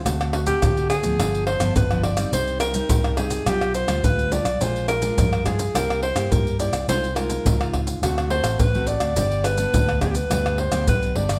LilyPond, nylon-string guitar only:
\new Staff \with { instrumentName = "Nylon-string guitar" } { \time 4/4 \key d \phrygian \tempo 4 = 105 << { <a c' fis'>8. <a c' fis'>8 <a c' fis'>8 <f b d'>4 <f b d'>8 <f b d'>8 <g c' ees'>16~ | \key c \minor <g c' ees'>8. <g c' ees'>8. <g c' ees'>8 <g d' f'>8. <g d' f'>8. <g d' f'>16 r16 | <aes d' f'>8. <aes d' f'>8. <aes d' f'>16 r16 <bes e' g'>8 r16 <bes e' g'>8. <bes e' g'>16 r16 | <aes ees' f'>16 r16 <aes ees' f'>8. <aes ees' f'>8. <a c' fis'>8 <a c' fis'>8 r16 <a c' fis'>8. |
<g b d'>8. <g b d'>8. <g b d'>16 r16 <g b d'>8. <g b d'>8. <g b d'>16 r16 | } \\ { d4 a,4 g,4 d4 | c4 g,4 b,4 b,4 | bes,4 f4 c4 g4 | c4 c4 d4 r4 |
g,4 d4 g,4 d4 | } >> }